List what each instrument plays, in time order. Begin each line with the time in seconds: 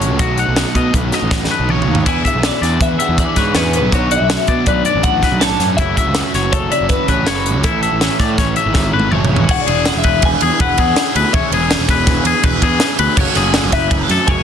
Already playing: picked electric bass F#1, clean electric guitar C#3 F#3 A3 E4 A4 C#5, overdriven electric guitar F#3 A3 C#4 F#4
0.01 clean electric guitar A2, closed hi-hat
0.11 picked electric bass C#2
0.19 picked electric bass B1, overdriven electric guitar B2 F#3 A3 D#4 F#4, clean electric guitar B2 F#4, kick, closed hi-hat
0.38 clean electric guitar D#4 F#5, closed hi-hat
0.48 picked electric bass B1
0.56 overdriven electric guitar B2 F#3 A3 D#4 F#4, clean electric guitar F#3 A3, snare, closed hi-hat
0.75 picked electric bass B2, clean electric guitar D#4 D#5, kick, closed hi-hat
0.94 picked electric bass B1, clean electric guitar A3 B4, kick, closed hi-hat
1.12 clean electric guitar F#2 D#4 D#5, overdriven electric guitar A3 D#4 F#4, snare, closed hi-hat
1.22 picked electric bass A1
1.31 picked electric bass A1, overdriven electric guitar F#3 A3 D#4 F#4, kick, snare
1.44 snare
1.49 overdriven electric guitar A3 D#4 F#4, clean electric guitar A4 B4
1.59 picked electric bass B1
1.68 overdriven electric guitar B2 F#3 A3 D#4, clean electric guitar C#3 C#5, mid tom
1.72 overdriven electric guitar F#4
1.82 mid tom
1.87 picked electric bass D#2, clean electric guitar D#3
1.95 floor tom
2.06 clean electric guitar E2 E3 B3 D4 E4 G#4 G#5, picked electric bass E2, overdriven electric guitar E3 B3 D4 G#4, kick, closed hi-hat, crash
2.24 clean electric guitar D4 E5, kick, closed hi-hat
2.35 picked electric bass B1
2.42 overdriven electric guitar E3 B3 D4 G#4, clean electric guitar E3 B3, snare, closed hi-hat
2.46 clean electric guitar D5
2.62 picked electric bass E2, clean electric guitar D4 D5, snare, closed hi-hat
2.80 picked electric bass E2, clean electric guitar B3 B4 E5, kick, closed hi-hat
2.99 clean electric guitar B2 D4 E5 F#5, overdriven electric guitar B3 D4 G#4, closed hi-hat
3.09 picked electric bass E2
3.18 overdriven electric guitar E3 B3 D4 G#4, clean electric guitar D5, kick, closed hi-hat
3.36 picked electric bass G#2, overdriven electric guitar B3 D4 G#4, clean electric guitar F#4 B4 C#5, kick, snare, closed hi-hat
3.47 clean electric guitar G#4
3.54 picked electric bass E2, clean electric guitar G#2 B4 C#5, overdriven electric guitar E3 B3 D4 G#4, snare, closed hi-hat
3.73 clean electric guitar A2 B4, closed hi-hat
3.84 picked electric bass B1
3.92 picked electric bass B1, overdriven electric guitar B2 F#3 B3 D4 F#4, clean electric guitar B2 F#4 C#5, kick, closed hi-hat
4.11 clean electric guitar D4 E5 F#5, closed hi-hat
4.20 picked electric bass B1
4.29 overdriven electric guitar B2 F#3 B3 D4, clean electric guitar F#3 A3, snare, closed hi-hat
4.33 overdriven electric guitar F#4
4.47 picked electric bass B2, clean electric guitar D4 D5, kick, closed hi-hat
4.66 picked electric bass B1, clean electric guitar A3 B4 D5, kick, closed hi-hat
4.85 clean electric guitar F#2 D4 D5, overdriven electric guitar B3 D4 F#4, closed hi-hat
4.95 picked electric bass A1
5.02 picked electric bass A1, overdriven electric guitar F#3 B3 D4 F#4, clean electric guitar F#5, kick, closed hi-hat
5.21 overdriven electric guitar B3 D4 F#4, clean electric guitar A4 B4, kick, snare, closed hi-hat
5.32 picked electric bass B1
5.39 clean electric guitar A2 C#5 A5, overdriven electric guitar B2 F#3 B3 D4 F#4, snare, closed hi-hat
5.59 picked electric bass F#2, clean electric guitar G#2, snare, closed hi-hat
5.77 picked electric bass F#1, clean electric guitar F#2 E4 E5, overdriven electric guitar F#3 A3 C#4, kick, closed hi-hat
5.81 overdriven electric guitar F#4
5.95 clean electric guitar E4 C#5 E5, kick, closed hi-hat
6.06 picked electric bass C#2
6.14 overdriven electric guitar F#3 A3 C#4, clean electric guitar F#3 A3 B4, snare, closed hi-hat
6.18 overdriven electric guitar F#4
6.34 picked electric bass F#1, clean electric guitar E4 C#5, snare, closed hi-hat
6.52 picked electric bass F#1, clean electric guitar A3 A4 C#5, kick, closed hi-hat
6.70 clean electric guitar C#3 E4 D5 E5, overdriven electric guitar A3 C#4 F#4, closed hi-hat
6.81 picked electric bass F#1
6.89 overdriven electric guitar F#3 A3 C#4 F#4, clean electric guitar B4, kick, closed hi-hat
7.08 picked electric bass A1, overdriven electric guitar A3 C#4 F#4, clean electric guitar A4 B4 C#5, kick, closed hi-hat
7.26 picked electric bass F#1, clean electric guitar F#2 B4 C#5, overdriven electric guitar F#3 A3 C#4 F#4, snare, closed hi-hat
7.46 clean electric guitar E4, closed hi-hat
7.56 picked electric bass C#2
7.64 picked electric bass A1, overdriven electric guitar A2 E3 A3 C#4 E4, clean electric guitar A2 E4 A4, kick, closed hi-hat
7.83 clean electric guitar E4 E5, closed hi-hat
7.93 picked electric bass A1
8.01 overdriven electric guitar A2 E3 A3 C#4 E4, clean electric guitar E3 C#4, snare, closed hi-hat
8.19 picked electric bass A2, clean electric guitar C#4 D5, kick, snare, closed hi-hat
8.30 clean electric guitar E4
8.38 picked electric bass A1, clean electric guitar C#4 C#5, kick, snare, closed hi-hat
8.56 clean electric guitar E3 C#4 E5, overdriven electric guitar A3 C#4 E4, closed hi-hat
8.66 picked electric bass G#1, clean electric guitar E4
8.74 picked electric bass G#1, overdriven electric guitar E3 A3 C#4 E4, kick, snare
8.92 picked electric bass G#1, overdriven electric guitar A3 C#4 E4, clean electric guitar E4 B4
9.00 high tom
9.10 picked electric bass F#1, overdriven electric guitar A2 E3 A3 C#4 E4, clean electric guitar A2 C#5, mid tom
9.15 clean electric guitar C#5
9.25 mid tom
9.30 picked electric bass E1, clean electric guitar C#4
9.36 floor tom
9.41 clean electric guitar E4
9.48 picked electric bass E1, overdriven electric guitar E3 B3 D4 G#4, clean electric guitar C#5 F#5, kick, crash
9.61 clean electric guitar D5
9.67 picked electric bass E1, clean electric guitar G#4, ride
9.86 clean electric guitar F#5, snare, ride
9.95 picked electric bass E1, clean electric guitar E5
10.04 picked electric bass E1, clean electric guitar B4, kick, ride
10.22 clean electric guitar G#5, kick, ride
10.41 picked electric bass E2, clean electric guitar G#4, ride
10.60 picked electric bass E1, clean electric guitar B4 F#5, kick, ride
10.78 picked electric bass E2, overdriven electric guitar B3 D4 G#4, clean electric guitar G#4, kick, ride
10.82 overdriven electric guitar E3
10.96 snare, ride
11.15 picked electric bass D2, clean electric guitar B4, ride
11.33 picked electric bass E1, overdriven electric guitar E3 B3 D4 G#4, clean electric guitar C#5 E5, kick, ride
11.44 clean electric guitar D5
11.51 picked electric bass E1, clean electric guitar G#4 C#5, ride
11.71 snare, ride
11.79 picked electric bass E1
11.88 picked electric bass E1, clean electric guitar B4, kick, snare, ride
12.07 kick, snare, ride
12.24 picked electric bass E2, clean electric guitar G#4, ride
12.43 picked electric bass E1, clean electric guitar B4, kick, ride
12.62 picked electric bass E2, overdriven electric guitar E3 B3 D4 G#4, clean electric guitar G#4, kick, ride
12.80 snare, ride
12.99 picked electric bass D2, clean electric guitar B4, ride
13.16 picked electric bass F#1, overdriven electric guitar F#3 A3 C#4, clean electric guitar C#5, kick, crash
13.20 overdriven electric guitar F#4
13.35 picked electric bass F#1, clean electric guitar G#4, snare, ride
13.54 snare, ride
13.63 picked electric bass F#1
13.72 picked electric bass F#1, clean electric guitar B4 E5, kick, snare, ride
13.90 clean electric guitar G#5, kick, ride
14.00 clean electric guitar A5
14.09 picked electric bass F#2, clean electric guitar A4, snare, ride
14.27 picked electric bass F#1, clean electric guitar C#5 G#5, kick, ride